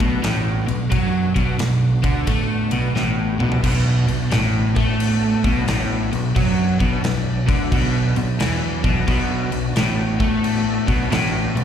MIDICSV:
0, 0, Header, 1, 5, 480
1, 0, Start_track
1, 0, Key_signature, 2, "minor"
1, 0, Tempo, 680272
1, 645, Time_signature, 4, 2, 24, 8
1, 8214, End_track
2, 0, Start_track
2, 0, Title_t, "Tonewheel organ"
2, 0, Program_c, 0, 16
2, 0, Note_on_c, 0, 59, 71
2, 0, Note_on_c, 0, 62, 68
2, 0, Note_on_c, 0, 66, 70
2, 621, Note_off_c, 0, 59, 0
2, 622, Note_off_c, 0, 62, 0
2, 622, Note_off_c, 0, 66, 0
2, 650, Note_on_c, 0, 66, 68
2, 653, Note_on_c, 0, 62, 71
2, 654, Note_on_c, 0, 59, 75
2, 2352, Note_on_c, 0, 55, 63
2, 2369, Note_on_c, 0, 57, 65
2, 2378, Note_off_c, 0, 59, 0
2, 2386, Note_on_c, 0, 59, 65
2, 2409, Note_on_c, 0, 60, 66
2, 2418, Note_off_c, 0, 62, 0
2, 2427, Note_on_c, 0, 62, 68
2, 2450, Note_on_c, 0, 64, 64
2, 2463, Note_on_c, 0, 65, 65
2, 2488, Note_on_c, 0, 67, 64
2, 2507, Note_on_c, 0, 69, 66
2, 2532, Note_on_c, 0, 71, 65
2, 2534, Note_off_c, 0, 55, 0
2, 2543, Note_off_c, 0, 57, 0
2, 2547, Note_on_c, 0, 72, 68
2, 2549, Note_off_c, 0, 66, 0
2, 2551, Note_off_c, 0, 59, 0
2, 2553, Note_off_c, 0, 62, 0
2, 2562, Note_off_c, 0, 60, 0
2, 2562, Note_on_c, 0, 62, 68
2, 2566, Note_on_c, 0, 66, 69
2, 2569, Note_on_c, 0, 59, 74
2, 2583, Note_off_c, 0, 64, 0
2, 2590, Note_off_c, 0, 65, 0
2, 2602, Note_off_c, 0, 67, 0
2, 2612, Note_off_c, 0, 69, 0
2, 2624, Note_off_c, 0, 71, 0
2, 2632, Note_off_c, 0, 72, 0
2, 4464, Note_off_c, 0, 62, 0
2, 4467, Note_off_c, 0, 66, 0
2, 4468, Note_off_c, 0, 59, 0
2, 4490, Note_on_c, 0, 62, 74
2, 4492, Note_on_c, 0, 54, 71
2, 4493, Note_on_c, 0, 59, 69
2, 6388, Note_off_c, 0, 62, 0
2, 6389, Note_off_c, 0, 54, 0
2, 6390, Note_off_c, 0, 59, 0
2, 6406, Note_on_c, 0, 59, 70
2, 6410, Note_on_c, 0, 62, 70
2, 6414, Note_on_c, 0, 66, 77
2, 8214, Note_off_c, 0, 59, 0
2, 8214, Note_off_c, 0, 62, 0
2, 8214, Note_off_c, 0, 66, 0
2, 8214, End_track
3, 0, Start_track
3, 0, Title_t, "Overdriven electric guitar"
3, 0, Program_c, 1, 29
3, 0, Note_on_c, 1, 47, 102
3, 158, Note_off_c, 1, 47, 0
3, 161, Note_on_c, 1, 45, 110
3, 467, Note_off_c, 1, 45, 0
3, 474, Note_on_c, 1, 47, 72
3, 610, Note_off_c, 1, 47, 0
3, 641, Note_on_c, 1, 54, 101
3, 947, Note_off_c, 1, 54, 0
3, 954, Note_on_c, 1, 47, 99
3, 1115, Note_off_c, 1, 47, 0
3, 1123, Note_on_c, 1, 47, 70
3, 1375, Note_off_c, 1, 47, 0
3, 1433, Note_on_c, 1, 50, 99
3, 1597, Note_off_c, 1, 50, 0
3, 1601, Note_on_c, 1, 57, 108
3, 1907, Note_off_c, 1, 57, 0
3, 1918, Note_on_c, 1, 47, 100
3, 2080, Note_off_c, 1, 47, 0
3, 2087, Note_on_c, 1, 45, 107
3, 2390, Note_off_c, 1, 45, 0
3, 2396, Note_on_c, 1, 47, 99
3, 2555, Note_off_c, 1, 47, 0
3, 2563, Note_on_c, 1, 47, 104
3, 2868, Note_off_c, 1, 47, 0
3, 2877, Note_on_c, 1, 47, 70
3, 3011, Note_off_c, 1, 47, 0
3, 3042, Note_on_c, 1, 45, 102
3, 3348, Note_off_c, 1, 45, 0
3, 3359, Note_on_c, 1, 57, 99
3, 3830, Note_off_c, 1, 57, 0
3, 3839, Note_on_c, 1, 47, 109
3, 4001, Note_off_c, 1, 47, 0
3, 4008, Note_on_c, 1, 45, 102
3, 4311, Note_off_c, 1, 45, 0
3, 4321, Note_on_c, 1, 47, 73
3, 4453, Note_off_c, 1, 47, 0
3, 4482, Note_on_c, 1, 54, 102
3, 4788, Note_off_c, 1, 54, 0
3, 4797, Note_on_c, 1, 47, 98
3, 4960, Note_off_c, 1, 47, 0
3, 4970, Note_on_c, 1, 47, 75
3, 5218, Note_off_c, 1, 47, 0
3, 5276, Note_on_c, 1, 50, 100
3, 5439, Note_off_c, 1, 50, 0
3, 5451, Note_on_c, 1, 47, 103
3, 5752, Note_off_c, 1, 47, 0
3, 5764, Note_on_c, 1, 47, 77
3, 5895, Note_off_c, 1, 47, 0
3, 5926, Note_on_c, 1, 52, 108
3, 6230, Note_off_c, 1, 52, 0
3, 6240, Note_on_c, 1, 47, 103
3, 6397, Note_off_c, 1, 47, 0
3, 6405, Note_on_c, 1, 47, 106
3, 6709, Note_off_c, 1, 47, 0
3, 6720, Note_on_c, 1, 47, 78
3, 6853, Note_off_c, 1, 47, 0
3, 6892, Note_on_c, 1, 45, 110
3, 7192, Note_off_c, 1, 45, 0
3, 7199, Note_on_c, 1, 57, 100
3, 7669, Note_off_c, 1, 57, 0
3, 7673, Note_on_c, 1, 47, 110
3, 7836, Note_off_c, 1, 47, 0
3, 7839, Note_on_c, 1, 45, 113
3, 8146, Note_off_c, 1, 45, 0
3, 8155, Note_on_c, 1, 47, 78
3, 8214, Note_off_c, 1, 47, 0
3, 8214, End_track
4, 0, Start_track
4, 0, Title_t, "Fingered electric bass"
4, 0, Program_c, 2, 33
4, 1, Note_on_c, 2, 35, 91
4, 155, Note_off_c, 2, 35, 0
4, 167, Note_on_c, 2, 33, 98
4, 458, Note_off_c, 2, 33, 0
4, 489, Note_on_c, 2, 35, 78
4, 639, Note_off_c, 2, 35, 0
4, 648, Note_on_c, 2, 42, 94
4, 938, Note_off_c, 2, 42, 0
4, 959, Note_on_c, 2, 35, 90
4, 1114, Note_off_c, 2, 35, 0
4, 1131, Note_on_c, 2, 35, 75
4, 1420, Note_off_c, 2, 35, 0
4, 1442, Note_on_c, 2, 38, 99
4, 1595, Note_off_c, 2, 38, 0
4, 1607, Note_on_c, 2, 45, 93
4, 1898, Note_off_c, 2, 45, 0
4, 1921, Note_on_c, 2, 35, 96
4, 2075, Note_off_c, 2, 35, 0
4, 2092, Note_on_c, 2, 33, 90
4, 2380, Note_off_c, 2, 33, 0
4, 2404, Note_on_c, 2, 35, 90
4, 2557, Note_off_c, 2, 35, 0
4, 2565, Note_on_c, 2, 35, 102
4, 2857, Note_off_c, 2, 35, 0
4, 2889, Note_on_c, 2, 35, 78
4, 3040, Note_off_c, 2, 35, 0
4, 3050, Note_on_c, 2, 33, 83
4, 3340, Note_off_c, 2, 33, 0
4, 3363, Note_on_c, 2, 45, 106
4, 3813, Note_off_c, 2, 45, 0
4, 3841, Note_on_c, 2, 35, 95
4, 3995, Note_off_c, 2, 35, 0
4, 4015, Note_on_c, 2, 33, 91
4, 4302, Note_off_c, 2, 33, 0
4, 4329, Note_on_c, 2, 35, 78
4, 4479, Note_off_c, 2, 35, 0
4, 4489, Note_on_c, 2, 42, 104
4, 4779, Note_off_c, 2, 42, 0
4, 4800, Note_on_c, 2, 35, 94
4, 4954, Note_off_c, 2, 35, 0
4, 4972, Note_on_c, 2, 35, 74
4, 5260, Note_off_c, 2, 35, 0
4, 5279, Note_on_c, 2, 38, 107
4, 5434, Note_off_c, 2, 38, 0
4, 5449, Note_on_c, 2, 35, 101
4, 5739, Note_off_c, 2, 35, 0
4, 5762, Note_on_c, 2, 35, 84
4, 5915, Note_off_c, 2, 35, 0
4, 5926, Note_on_c, 2, 40, 93
4, 6217, Note_off_c, 2, 40, 0
4, 6241, Note_on_c, 2, 35, 96
4, 6395, Note_off_c, 2, 35, 0
4, 6405, Note_on_c, 2, 35, 100
4, 6696, Note_off_c, 2, 35, 0
4, 6723, Note_on_c, 2, 35, 80
4, 6876, Note_off_c, 2, 35, 0
4, 6883, Note_on_c, 2, 33, 93
4, 7175, Note_off_c, 2, 33, 0
4, 7200, Note_on_c, 2, 45, 103
4, 7651, Note_off_c, 2, 45, 0
4, 7682, Note_on_c, 2, 35, 96
4, 7835, Note_off_c, 2, 35, 0
4, 7844, Note_on_c, 2, 33, 94
4, 8136, Note_off_c, 2, 33, 0
4, 8161, Note_on_c, 2, 35, 83
4, 8214, Note_off_c, 2, 35, 0
4, 8214, End_track
5, 0, Start_track
5, 0, Title_t, "Drums"
5, 1, Note_on_c, 9, 51, 72
5, 2, Note_on_c, 9, 36, 98
5, 71, Note_off_c, 9, 51, 0
5, 73, Note_off_c, 9, 36, 0
5, 167, Note_on_c, 9, 51, 100
5, 174, Note_on_c, 9, 38, 110
5, 237, Note_off_c, 9, 51, 0
5, 244, Note_off_c, 9, 38, 0
5, 482, Note_on_c, 9, 51, 67
5, 553, Note_off_c, 9, 51, 0
5, 646, Note_on_c, 9, 51, 101
5, 648, Note_on_c, 9, 36, 103
5, 717, Note_off_c, 9, 51, 0
5, 719, Note_off_c, 9, 36, 0
5, 960, Note_on_c, 9, 36, 91
5, 961, Note_on_c, 9, 51, 69
5, 1030, Note_off_c, 9, 36, 0
5, 1031, Note_off_c, 9, 51, 0
5, 1123, Note_on_c, 9, 51, 90
5, 1130, Note_on_c, 9, 38, 103
5, 1193, Note_off_c, 9, 51, 0
5, 1200, Note_off_c, 9, 38, 0
5, 1436, Note_on_c, 9, 51, 72
5, 1439, Note_on_c, 9, 36, 104
5, 1507, Note_off_c, 9, 51, 0
5, 1510, Note_off_c, 9, 36, 0
5, 1602, Note_on_c, 9, 51, 99
5, 1605, Note_on_c, 9, 36, 101
5, 1672, Note_off_c, 9, 51, 0
5, 1675, Note_off_c, 9, 36, 0
5, 1912, Note_on_c, 9, 51, 70
5, 1983, Note_off_c, 9, 51, 0
5, 2088, Note_on_c, 9, 38, 65
5, 2158, Note_off_c, 9, 38, 0
5, 2401, Note_on_c, 9, 45, 89
5, 2471, Note_off_c, 9, 45, 0
5, 2482, Note_on_c, 9, 43, 85
5, 2552, Note_off_c, 9, 43, 0
5, 2565, Note_on_c, 9, 49, 114
5, 2565, Note_on_c, 9, 57, 77
5, 2566, Note_on_c, 9, 36, 106
5, 2636, Note_off_c, 9, 49, 0
5, 2636, Note_off_c, 9, 57, 0
5, 2637, Note_off_c, 9, 36, 0
5, 2881, Note_on_c, 9, 57, 58
5, 2951, Note_off_c, 9, 57, 0
5, 3043, Note_on_c, 9, 57, 75
5, 3050, Note_on_c, 9, 38, 109
5, 3114, Note_off_c, 9, 57, 0
5, 3121, Note_off_c, 9, 38, 0
5, 3361, Note_on_c, 9, 36, 108
5, 3362, Note_on_c, 9, 57, 59
5, 3432, Note_off_c, 9, 36, 0
5, 3432, Note_off_c, 9, 57, 0
5, 3528, Note_on_c, 9, 57, 90
5, 3599, Note_off_c, 9, 57, 0
5, 3841, Note_on_c, 9, 36, 107
5, 3841, Note_on_c, 9, 57, 59
5, 3911, Note_off_c, 9, 57, 0
5, 3912, Note_off_c, 9, 36, 0
5, 4005, Note_on_c, 9, 57, 83
5, 4012, Note_on_c, 9, 38, 107
5, 4075, Note_off_c, 9, 57, 0
5, 4082, Note_off_c, 9, 38, 0
5, 4323, Note_on_c, 9, 57, 63
5, 4394, Note_off_c, 9, 57, 0
5, 4488, Note_on_c, 9, 57, 81
5, 4489, Note_on_c, 9, 36, 104
5, 4559, Note_off_c, 9, 36, 0
5, 4559, Note_off_c, 9, 57, 0
5, 4800, Note_on_c, 9, 57, 56
5, 4801, Note_on_c, 9, 36, 95
5, 4871, Note_off_c, 9, 57, 0
5, 4872, Note_off_c, 9, 36, 0
5, 4966, Note_on_c, 9, 57, 73
5, 4973, Note_on_c, 9, 38, 101
5, 5037, Note_off_c, 9, 57, 0
5, 5044, Note_off_c, 9, 38, 0
5, 5282, Note_on_c, 9, 36, 113
5, 5285, Note_on_c, 9, 57, 66
5, 5353, Note_off_c, 9, 36, 0
5, 5355, Note_off_c, 9, 57, 0
5, 5447, Note_on_c, 9, 36, 108
5, 5448, Note_on_c, 9, 57, 85
5, 5518, Note_off_c, 9, 36, 0
5, 5518, Note_off_c, 9, 57, 0
5, 5758, Note_on_c, 9, 57, 57
5, 5829, Note_off_c, 9, 57, 0
5, 5925, Note_on_c, 9, 57, 80
5, 5932, Note_on_c, 9, 38, 118
5, 5996, Note_off_c, 9, 57, 0
5, 6003, Note_off_c, 9, 38, 0
5, 6238, Note_on_c, 9, 36, 102
5, 6238, Note_on_c, 9, 57, 58
5, 6308, Note_off_c, 9, 57, 0
5, 6309, Note_off_c, 9, 36, 0
5, 6405, Note_on_c, 9, 36, 99
5, 6405, Note_on_c, 9, 57, 78
5, 6476, Note_off_c, 9, 36, 0
5, 6476, Note_off_c, 9, 57, 0
5, 6717, Note_on_c, 9, 57, 54
5, 6787, Note_off_c, 9, 57, 0
5, 6885, Note_on_c, 9, 57, 78
5, 6892, Note_on_c, 9, 38, 110
5, 6956, Note_off_c, 9, 57, 0
5, 6963, Note_off_c, 9, 38, 0
5, 7197, Note_on_c, 9, 57, 62
5, 7198, Note_on_c, 9, 36, 101
5, 7267, Note_off_c, 9, 57, 0
5, 7268, Note_off_c, 9, 36, 0
5, 7367, Note_on_c, 9, 57, 79
5, 7437, Note_off_c, 9, 57, 0
5, 7678, Note_on_c, 9, 36, 102
5, 7678, Note_on_c, 9, 57, 64
5, 7749, Note_off_c, 9, 36, 0
5, 7749, Note_off_c, 9, 57, 0
5, 7846, Note_on_c, 9, 57, 90
5, 7854, Note_on_c, 9, 38, 113
5, 7917, Note_off_c, 9, 57, 0
5, 7924, Note_off_c, 9, 38, 0
5, 8162, Note_on_c, 9, 57, 63
5, 8214, Note_off_c, 9, 57, 0
5, 8214, End_track
0, 0, End_of_file